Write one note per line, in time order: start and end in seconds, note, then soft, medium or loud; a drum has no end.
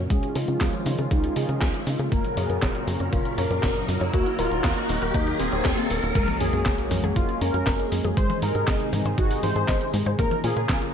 0.00 2.08 C#4 medium
0.00 riser medium
0.10 0.20 C#2 loud
0.10 2.10 D#3 medium
0.10 2.10 F3 medium
0.10 0.22 G#3 medium
0.10 2.10 G#3 medium
0.10 2.10 F4 medium
0.10 0.31 G#4 loud
0.10 kick loud
0.10 closed hi-hat loud
0.23 closed hi-hat soft
0.35 0.45 C#3 medium
0.35 0.67 F4 loud
0.35 0.43 G#4 loud
0.35 open hi-hat loud
0.48 0.58 C#3 medium
0.48 0.60 F4 medium
0.48 closed hi-hat soft
0.61 0.71 C#2 medium
0.61 0.68 G#4 medium
0.61 kick loud
0.61 snare loud
0.61 clap medium
0.61 closed hi-hat medium
0.73 closed hi-hat soft
0.86 0.96 C#3 loud
0.86 0.94 D#4 medium
0.86 open hi-hat medium
0.98 1.09 C#3 medium
0.98 1.03 G#4 medium
0.98 closed hi-hat soft
1.11 1.31 C#2 medium
1.11 1.23 G#3 medium
1.11 1.32 D#4 medium
1.11 kick loud
1.11 closed hi-hat loud
1.24 closed hi-hat soft
1.36 1.46 C#3 medium
1.36 1.44 G#4 loud
1.36 1.79 G#4 loud
1.36 open hi-hat loud
1.49 1.59 C#3 medium
1.49 1.60 F4 medium
1.49 closed hi-hat soft
1.61 1.71 C#2 loud
1.61 1.69 G#4 medium
1.61 kick loud
1.61 snare loud
1.61 clap medium
1.61 closed hi-hat medium
1.74 closed hi-hat soft
1.87 1.97 C#3 medium
1.87 1.94 D#4 medium
1.87 open hi-hat medium
1.99 2.09 C#3 medium
1.99 2.04 G#4 medium
1.99 closed hi-hat soft
2.12 2.22 F#1 loud
2.12 4.12 A#2 medium
2.12 4.12 C#3 medium
2.12 6.11 F#3 medium
2.12 2.24 A#3 medium
2.12 2.33 A#4 loud
2.12 6.11 A#4 medium
2.12 kick loud
2.12 closed hi-hat medium
2.24 closed hi-hat soft
2.37 2.47 F#2 medium
2.37 2.69 G#4 loud
2.37 2.45 C#5 loud
2.37 open hi-hat medium
2.50 2.60 F#2 medium
2.50 2.61 A#4 medium
2.50 closed hi-hat soft
2.62 2.72 F#1 medium
2.62 2.70 C#5 medium
2.62 kick loud
2.62 snare loud
2.62 clap medium
2.62 closed hi-hat medium
2.75 closed hi-hat soft
2.87 2.97 F#2 loud
2.87 2.95 F#4 medium
2.87 open hi-hat medium
3.00 3.10 F#2 medium
3.00 3.05 C#5 medium
3.00 closed hi-hat soft
3.13 3.23 F#1 loud
3.13 3.24 A#3 medium
3.13 3.34 F4 medium
3.13 kick loud
3.13 closed hi-hat medium
3.25 closed hi-hat soft
3.38 3.48 F#2 medium
3.38 3.80 A#4 loud
3.38 3.46 C#5 loud
3.38 open hi-hat loud
3.51 3.61 F#2 medium
3.51 3.62 A#4 medium
3.51 closed hi-hat soft
3.63 3.83 F#1 medium
3.63 3.71 C#5 medium
3.63 kick loud
3.63 snare loud
3.63 clap medium
3.63 closed hi-hat medium
3.76 closed hi-hat soft
3.88 3.98 F#2 medium
3.88 3.96 F#4 medium
3.88 open hi-hat medium
4.01 4.11 F#2 medium
4.01 4.06 C#5 medium
4.01 closed hi-hat soft
4.13 4.24 D#2 loud
4.13 6.13 D#3 medium
4.13 6.13 A#3 medium
4.13 4.25 A#3 medium
4.13 4.35 F#4 loud
4.13 kick loud
4.13 closed hi-hat medium
4.26 closed hi-hat soft
4.39 4.49 D#1 medium
4.39 4.71 F4 loud
4.39 4.47 A#4 loud
4.39 open hi-hat loud
4.51 4.61 D#1 medium
4.51 4.63 F#4 medium
4.51 closed hi-hat soft
4.64 4.74 D#2 medium
4.64 4.72 A#4 medium
4.64 kick loud
4.64 snare loud
4.64 clap medium
4.64 closed hi-hat medium
4.77 closed hi-hat soft
4.89 4.99 D#1 loud
4.89 4.97 D#4 medium
4.89 open hi-hat medium
5.02 5.12 D#1 medium
5.02 5.07 A#4 medium
5.02 closed hi-hat soft
5.14 5.34 D#2 medium
5.14 5.26 A#3 medium
5.14 5.36 D#4 loud
5.14 kick loud
5.14 closed hi-hat medium
5.27 closed hi-hat soft
5.40 5.50 D#1 medium
5.40 5.44 A#3 medium
5.40 5.82 C4 loud
5.40 open hi-hat loud
5.52 5.62 D#1 medium
5.52 5.57 C#5 medium
5.52 closed hi-hat soft
5.65 5.75 D#2 loud
5.65 5.73 C#4 loud
5.65 kick loud
5.65 snare loud
5.65 clap medium
5.65 closed hi-hat medium
5.77 5.85 A#3 loud
5.77 closed hi-hat soft
5.90 6.00 D#1 medium
5.90 5.98 A#4 medium
5.90 open hi-hat medium
6.03 6.13 D#1 medium
6.03 6.10 A#3 medium
6.03 closed hi-hat soft
6.15 6.25 F#1 loud
6.15 8.15 F#3 medium
6.15 6.27 G#3 medium
6.15 10.15 G#3 medium
6.15 8.15 A#3 medium
6.15 8.15 C#4 medium
6.15 10.15 G#4 medium
6.15 6.36 A#4 loud
6.15 kick loud
6.15 closed hi-hat loud
6.15 crash loud
6.15 impact medium
6.28 closed hi-hat soft
6.28 high tom medium
6.40 6.51 F#2 medium
6.40 6.48 C#4 medium
6.40 6.72 G#4 loud
6.40 open hi-hat loud
6.53 6.63 F#2 medium
6.53 6.61 F#4 medium
6.53 closed hi-hat soft
6.66 6.76 F#1 medium
6.66 6.77 A#4 medium
6.66 kick loud
6.66 snare loud
6.66 clap loud
6.66 closed hi-hat medium
6.78 closed hi-hat soft
6.91 7.01 F#2 loud
6.91 6.96 G#3 medium
6.91 open hi-hat loud
6.91 high tom medium
7.03 7.13 F#2 medium
7.03 7.08 G#4 loud
7.03 closed hi-hat soft
7.16 7.26 F#1 loud
7.16 7.28 G#3 medium
7.16 7.37 F4 medium
7.16 kick loud
7.16 closed hi-hat loud
7.29 closed hi-hat soft
7.41 7.51 F#2 loud
7.41 7.49 C#4 medium
7.41 7.84 A#4 loud
7.41 open hi-hat loud
7.54 7.64 F#2 medium
7.54 7.62 F#4 medium
7.54 closed hi-hat soft
7.67 7.86 F#1 medium
7.67 7.78 A#4 medium
7.67 kick loud
7.67 snare loud
7.67 clap loud
7.67 closed hi-hat loud
7.79 closed hi-hat soft
7.92 8.02 F#2 medium
7.92 7.96 G#3 medium
7.92 open hi-hat loud
8.04 8.14 F#2 loud
8.04 8.09 G#4 loud
8.04 closed hi-hat soft
8.04 high tom medium
8.17 8.27 G#1 loud
8.17 10.17 C3 medium
8.17 10.17 D#3 medium
8.17 8.29 G#3 medium
8.17 10.17 D#4 medium
8.17 8.38 C5 loud
8.17 kick loud
8.17 closed hi-hat medium
8.30 closed hi-hat soft
8.30 high tom medium
8.42 8.52 G#2 medium
8.42 8.50 D#4 medium
8.42 8.74 A#4 loud
8.42 open hi-hat loud
8.55 8.65 G#2 medium
8.55 8.63 G#4 medium
8.55 closed hi-hat soft
8.68 8.77 G#1 medium
8.68 8.79 D#5 medium
8.68 kick loud
8.68 snare loud
8.68 clap loud
8.68 closed hi-hat medium
8.80 closed hi-hat soft
8.93 9.03 G#2 loud
8.93 8.97 G#3 medium
8.93 open hi-hat loud
8.93 high tom medium
9.05 9.15 G#2 medium
9.05 9.10 C5 loud
9.05 closed hi-hat soft
9.18 9.38 G#1 loud
9.18 9.29 G#3 medium
9.18 9.39 F#4 medium
9.18 kick loud
9.18 closed hi-hat loud
9.31 open hi-hat medium
9.43 9.53 G#2 medium
9.43 9.51 D#4 medium
9.43 9.85 C5 loud
9.43 open hi-hat loud
9.43 high tom medium
9.56 9.66 G#2 medium
9.56 9.63 G#4 medium
9.56 closed hi-hat soft
9.68 9.78 G#1 loud
9.68 9.80 D#5 medium
9.68 kick loud
9.68 snare loud
9.68 clap loud
9.68 closed hi-hat medium
9.81 closed hi-hat soft
9.94 10.03 G#2 loud
9.94 9.98 G#3 medium
9.94 open hi-hat loud
10.06 10.16 G#2 loud
10.06 10.11 C5 loud
10.06 closed hi-hat soft
10.19 10.29 A#1 loud
10.19 10.94 C#3 medium
10.19 10.94 F3 medium
10.19 10.94 A#3 medium
10.19 10.30 A#3 medium
10.19 10.94 F4 medium
10.19 10.40 A#4 loud
10.19 10.94 A#4 medium
10.19 kick loud
10.19 closed hi-hat medium
10.31 closed hi-hat soft
10.31 high tom medium
10.44 10.54 A#2 medium
10.44 10.52 F4 medium
10.44 10.76 G#4 loud
10.44 open hi-hat loud
10.57 10.66 A#2 medium
10.57 10.64 A#4 medium
10.57 closed hi-hat soft
10.69 10.79 A#1 medium
10.69 10.81 F5 medium
10.69 kick loud
10.69 snare loud
10.69 clap loud
10.69 closed hi-hat medium
10.82 closed hi-hat soft